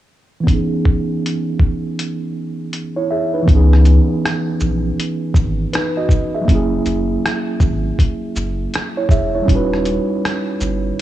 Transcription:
0.40 tine electric piano E3 B3
0.47 tine electric piano C#4 D#4, kick, closed hi-hat
0.54 tine electric piano G#4
0.85 kick
1.26 closed hi-hat
1.59 kick
1.99 closed hi-hat
2.73 closed hi-hat
2.96 tine electric piano E4 C#5
3.11 tine electric piano G#4 E5
3.34 tine electric piano D#4 B4
3.42 tine electric piano E3 B3
3.48 sub bass C#2, tine electric piano C#4, kick, closed hi-hat
3.52 tine electric piano D#4 G#4
3.73 cross-stick
3.85 closed hi-hat, shaker
4.26 cross-stick, closed hi-hat
4.60 sub bass A#1, shaker
5.00 closed hi-hat
5.34 sub bass G#1, kick, shaker
5.73 tine electric piano D#4 B4, cross-stick, closed hi-hat
5.97 tine electric piano F#4 D#5
6.09 kick, shaker
6.35 tine electric piano G#4 E5
6.41 tine electric piano F#3 A#3
6.48 sub bass F#1, tine electric piano C#4 E4, kick, closed hi-hat
6.55 tine electric piano G#4
6.86 sub bass F#1, closed hi-hat, shaker
7.26 cross-stick, closed hi-hat
7.60 sub bass G#1, kick, shaker
7.99 kick, closed hi-hat
8.36 sub bass F#1, shaker
8.74 cross-stick, closed hi-hat
8.97 tine electric piano E4 C#5
9.09 sub bass E1, tine electric piano G#4 E5, kick, shaker
9.35 tine electric piano E4 C#5
9.42 tine electric piano G3 C#4
9.48 sub bass D#1, tine electric piano D#4, kick, closed hi-hat
9.52 tine electric piano F#4 B4
9.73 cross-stick
9.85 closed hi-hat, shaker
10.25 cross-stick, closed hi-hat
10.61 sub bass G1, shaker

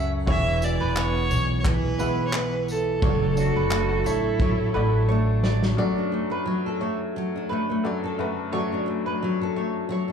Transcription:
Already playing: upright bass C#2, nylon-string guitar F#2 F#3 A3 F#4 A4, upright piano A3 F#4 C#5, mandolin E5
0.26 upright bass E1, nylon-string guitar E3, upright piano G#3 F#4 E5, mandolin C#5, violin E5, kick
0.62 nylon-string guitar F#4, violin D5, tambourine
0.80 upright bass E1, mandolin B4
0.96 nylon-string guitar B3, violin C#5, clap
1.30 upright bass B1, mandolin C#5, tambourine
1.60 violin C#5
1.64 nylon-string guitar E3, violin B4, kick, clap
1.99 upright bass B1, upright piano G#3 F#4 E5, nylon-string guitar B3, mandolin B4, tambourine
2.27 violin C#5
2.33 nylon-string guitar B3, violin B4, clap
2.68 violin A4, tambourine
3.02 upright bass F#1, nylon-string guitar F#3, upright piano A3 F4 D5, mandolin C#5, kick
3.10 upright piano F#4
3.36 nylon-string guitar D4, cello F#4, tambourine
3.56 upright bass F#1, mandolin B4
3.70 nylon-string guitar A3, clap
4.04 upright bass A1, cello E4, nylon-string guitar A4, mandolin C#5, tambourine
4.40 nylon-string guitar F#3, mandolin C#5, kick
4.74 upright bass A1, upright piano A3 F#4 D5, nylon-string guitar A3, cello E4, mandolin B4
5.09 nylon-string guitar A3, cello D4, mandolin C#5
5.43 mandolin D5, snare
5.62 snare
5.77 upright piano F#2 A3 F#4 D5, nylon-string guitar F#3, mandolin D5
5.97 nylon-string guitar D4
6.12 nylon-string guitar A3
6.30 nylon-string guitar A3, mandolin B4
6.46 nylon-string guitar F#3
6.66 nylon-string guitar A4
6.81 nylon-string guitar A3, mandolin C#5
7.16 nylon-string guitar F#3
7.36 nylon-string guitar D4
7.49 nylon-string guitar A3, mandolin B4
7.70 nylon-string guitar A3
7.83 upright piano F#2 A3 F#4 D5, nylon-string guitar F#3
8.04 nylon-string guitar A4
8.18 upright piano F#2 A3 F#4 B4, nylon-string guitar A3
8.52 upright piano F#2 A3 F#4 D5, nylon-string guitar F#3, mandolin C#5
8.72 nylon-string guitar D4
8.86 nylon-string guitar A3
9.06 nylon-string guitar A3, mandolin B4
9.22 nylon-string guitar F#3
9.42 nylon-string guitar A4
9.56 nylon-string guitar A3, mandolin C#5
9.89 nylon-string guitar F#3, mandolin C#5
10.08 nylon-string guitar D4

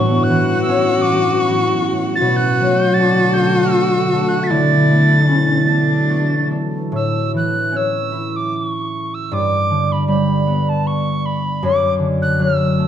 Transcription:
Already playing: ambient pad A2 F#3 C#4, harp A2 B3 D4, cello F#4, tin whistle C#6
0.23 tin whistle F#6
0.29 harp E3
0.62 tin whistle E6
0.68 harp C#4
1.01 tin whistle D6
1.07 harp F#4
1.37 tin whistle C#6 D6
1.46 harp E4
1.82 harp F#4
2.15 cello F#4, tin whistle A6
2.21 ambient pad B2 D3 A3, harp B2
2.36 tin whistle F#6
2.60 harp F#3
2.75 tin whistle G6
2.94 tin whistle A6
2.99 harp D4
3.33 harp A4, tin whistle G6
3.69 tin whistle E6
3.75 harp F#4
4.13 harp A4
4.28 tin whistle F#6
4.43 tin whistle A6 B6
4.50 harp D3, ambient pad E3 F#3, cello E4
4.91 harp A3
5.27 cello C#4, harp E4
5.66 cello D4, harp A4
6.09 harp F#4
6.51 harp A4
6.92 harp A2, tin whistle E6
7.34 harp E3, tin whistle F#6
7.72 harp C#4
7.76 tin whistle E6
8.12 harp E4
8.36 tin whistle D6
8.56 tin whistle C#6
9.14 tin whistle E6
9.31 harp G2, tin whistle D6
9.70 harp D3
9.92 tin whistle B5
10.07 harp G3, tin whistle B5
10.47 harp B3
10.69 tin whistle A5
10.87 tin whistle C#6
11.25 tin whistle B5
11.63 harp F#2, tin whistle D6
11.99 harp D3
12.22 tin whistle F#6
12.39 harp F#3, tin whistle E6
12.79 harp A3

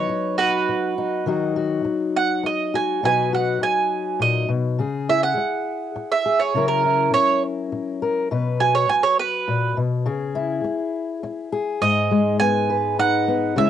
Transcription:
Already playing: steel-string acoustic guitar F#3 B3 D#4 B4, mandolin C#5
0.09 muted steel-string acoustic guitar stroke
0.38 mandolin F#4 B4
0.69 muted steel-string acoustic guitar stroke
0.98 steel-string acoustic guitar D#4
1.26 steel-string acoustic guitar D#3 F#3 D#4 F#4
1.56 steel-string acoustic guitar F#4
1.85 muted steel-string acoustic guitar stroke
2.16 mandolin F#5
2.43 mandolin D#5, muted steel-string acoustic guitar stroke
2.74 steel-string acoustic guitar F#4, mandolin G#5
3.03 steel-string acoustic guitar B2 F#3 D#4 F#4 B4, mandolin G#5
3.33 steel-string acoustic guitar F#4, mandolin F#5
3.61 mandolin G#5, muted steel-string acoustic guitar stroke
4.19 steel-string acoustic guitar A#2, mandolin D#5
4.49 steel-string acoustic guitar B2
4.79 steel-string acoustic guitar C#3 G#4
5.09 steel-string acoustic guitar E4, mandolin E5
5.23 mandolin F#5
5.37 muted steel-string acoustic guitar stroke
5.96 muted steel-string acoustic guitar stroke
6.12 mandolin E5
6.26 steel-string acoustic guitar G#4
6.40 mandolin C#5
6.54 steel-string acoustic guitar C#3 F#3 C#4 E4 A#4
6.68 mandolin A#4
6.85 steel-string acoustic guitar E4
7.14 mandolin C#5, muted steel-string acoustic guitar stroke
7.72 muted steel-string acoustic guitar stroke
8.02 steel-string acoustic guitar A#4
8.31 steel-string acoustic guitar B2 B4
8.60 steel-string acoustic guitar F#4, mandolin G#5
8.75 mandolin C#5
8.89 mandolin G#5, muted steel-string acoustic guitar stroke
9.03 mandolin C#5
9.19 mandolin B4
9.48 steel-string acoustic guitar A#2
9.77 steel-string acoustic guitar B2
10.06 steel-string acoustic guitar C#3 G#4
10.35 steel-string acoustic guitar E4
10.64 muted steel-string acoustic guitar stroke
11.23 muted steel-string acoustic guitar stroke
11.52 steel-string acoustic guitar G#4
11.81 steel-string acoustic guitar G#2, mandolin D#5
12.11 steel-string acoustic guitar G#3
12.40 steel-string acoustic guitar B3, mandolin G#5
12.70 steel-string acoustic guitar B4
12.99 steel-string acoustic guitar D#4, mandolin F#5
13.28 steel-string acoustic guitar B3
13.56 steel-string acoustic guitar C#3 G#3 C#4 E4 G#4, mandolin E5

